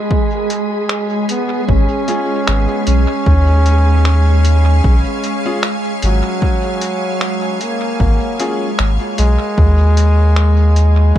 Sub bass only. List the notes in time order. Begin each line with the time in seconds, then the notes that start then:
1.68 G#1
2.48 G#1
2.87 B1
3.26 D#2
4.84 B1
6.03 G#1
8.00 G#1
8.79 G#1
9.19 B1
9.58 D#2